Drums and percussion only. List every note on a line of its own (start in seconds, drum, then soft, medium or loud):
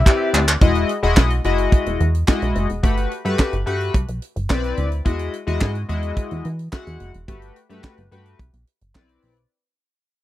0.06 kick loud
0.06 clap loud
0.34 clap loud
0.48 clap loud
0.61 kick loud
0.61 closed hi-hat medium
0.75 closed hi-hat medium
0.89 closed hi-hat medium
1.03 closed hi-hat soft
1.17 kick loud
1.17 snare loud
1.17 clap medium
1.30 closed hi-hat medium
1.44 closed hi-hat medium
1.58 closed hi-hat medium
1.72 kick loud
1.72 closed hi-hat medium
1.86 closed hi-hat medium
2.00 closed hi-hat medium
2.15 closed hi-hat medium
2.28 kick loud
2.28 snare loud
2.28 clap loud
2.42 closed hi-hat medium
2.55 closed hi-hat medium
2.69 closed hi-hat medium
2.83 kick loud
2.83 closed hi-hat medium
2.97 closed hi-hat medium
3.11 closed hi-hat medium
3.25 closed hi-hat medium
3.39 kick loud
3.39 snare loud
3.39 clap medium
3.53 closed hi-hat medium
3.67 closed hi-hat medium
3.80 closed hi-hat medium
3.94 kick loud
3.94 closed hi-hat medium
4.08 closed hi-hat medium
4.22 closed hi-hat medium
4.36 closed hi-hat medium
4.50 kick loud
4.50 snare loud
4.50 clap loud
4.64 closed hi-hat medium
4.77 closed hi-hat medium
4.92 closed hi-hat medium
5.05 kick loud
5.05 closed hi-hat medium
5.19 closed hi-hat medium
5.33 closed hi-hat medium
5.48 closed hi-hat medium
5.61 kick loud
5.61 snare loud
5.61 clap loud
5.75 closed hi-hat medium
5.89 closed hi-hat medium
6.03 closed hi-hat medium
6.16 kick loud
6.16 closed hi-hat medium
6.31 closed hi-hat soft
6.45 closed hi-hat medium
6.59 closed hi-hat medium
6.72 kick loud
6.72 snare loud
6.72 clap loud
6.87 closed hi-hat medium
7.00 closed hi-hat medium
7.14 closed hi-hat soft
7.28 kick loud
7.28 closed hi-hat medium
7.42 closed hi-hat medium
7.56 closed hi-hat medium
7.70 closed hi-hat soft
7.84 kick loud
7.84 snare loud
7.84 clap medium
7.98 closed hi-hat soft
8.12 closed hi-hat medium
8.25 closed hi-hat medium
8.39 kick loud
8.39 closed hi-hat medium
8.53 closed hi-hat medium
8.67 closed hi-hat medium
8.81 closed hi-hat medium
8.95 kick loud
8.95 snare loud
8.95 clap loud
9.09 closed hi-hat medium
9.22 open hi-hat medium
9.37 closed hi-hat soft